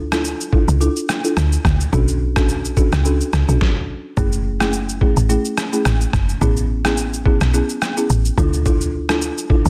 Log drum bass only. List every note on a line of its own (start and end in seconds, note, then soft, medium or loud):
0.00 0.34 D2 medium
0.68 0.89 C#2 medium
1.37 1.57 D2 loud
1.65 1.85 D2 loud
1.93 2.88 B1 loud
2.93 3.22 C#2 medium
3.33 3.44 C#2 medium
3.48 3.58 B1 medium
4.17 5.13 F#1 loud
5.17 5.37 A1 medium
5.86 6.06 A1 medium
6.13 6.34 F#1 medium
6.41 7.37 A1 loud
7.41 7.62 B1 medium
8.10 8.30 A1 medium
8.38 9.31 D2 medium
9.65 9.70 C#2 medium